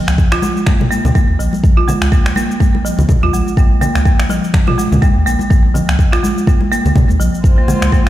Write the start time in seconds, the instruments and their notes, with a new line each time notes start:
0.07 sub bass C#2, finger snap, cabasa
0.18 kick, cabasa
0.32 sub bass A#1, marimba F4, finger snap, cabasa
0.42 marimba G#3, high conga, cabasa
0.57 cabasa
0.66 marimba A#3, finger snap, kick, high conga, cabasa
0.81 mid tom, high conga
0.91 marimba A#3, cabasa
1.04 sub bass C#2, mid tom, low conga, cabasa
1.15 marimba A#3, kick, high conga, cabasa
1.29 sub bass D#2
1.39 sub bass A#1, marimba F3, cabasa
1.53 high conga, cabasa
1.63 sub bass A#1, kick, cabasa
1.77 marimba F4
1.88 marimba G#3, low conga, cabasa
2.01 sub bass C#2, finger snap, cabasa
2.12 marimba A#3, kick, cabasa
2.25 sub bass A#1, finger snap, cabasa
2.36 marimba A#3, high conga, cabasa
2.51 cabasa
2.60 marimba A#3, kick, high conga, cabasa
2.75 high conga
2.85 marimba F3, cabasa
2.98 sub bass C#2, low conga, cabasa
3.09 kick, mid tom, low conga, cabasa
3.22 sub bass D#2, marimba F4, high conga
3.33 sub bass A#1, marimba G#3, cabasa
3.48 cabasa
3.57 sub bass A#1, marimba A#3, kick, cabasa
3.81 marimba A#3, low conga, cabasa
3.95 sub bass C#2, finger snap, cabasa
4.05 marimba A#3, kick, cabasa
4.19 sub bass A#1, finger snap, cabasa
4.29 marimba F3, high conga, cabasa
4.44 cabasa
4.54 finger snap, kick, high conga, cabasa
4.67 marimba F4, mid tom, high conga
4.78 marimba G#3, cabasa
4.92 sub bass C#2, mid tom, low conga, cabasa
5.02 marimba A#3, kick, high conga, cabasa
5.16 sub bass D#2
5.26 sub bass A#1, marimba A#3, cabasa
5.39 high conga, cabasa
5.50 sub bass A#1, marimba A#3, kick, cabasa
5.74 marimba F3, low conga, cabasa
5.88 sub bass C#2, finger snap, cabasa
5.99 kick, cabasa
6.12 sub bass A#1, marimba F4, finger snap, cabasa
6.23 marimba G#3, high conga, cabasa
6.38 cabasa
6.47 marimba A#3, kick, high conga, cabasa
6.61 high conga
6.71 marimba A#3, cabasa
6.85 sub bass C#2, low conga, cabasa
6.96 marimba A#3, kick, mid tom, low conga, cabasa
7.09 sub bass D#2, high conga, cabasa
7.20 sub bass A#1, marimba F3, cabasa
7.34 cabasa
7.44 sub bass A#1, string section A#3 F4 C5, kick, cabasa
7.58 marimba A#3
7.68 marimba G#3, low conga, cabasa
7.82 sub bass C#2, finger snap, cabasa
7.92 marimba A#3, kick, cabasa
8.06 sub bass A#1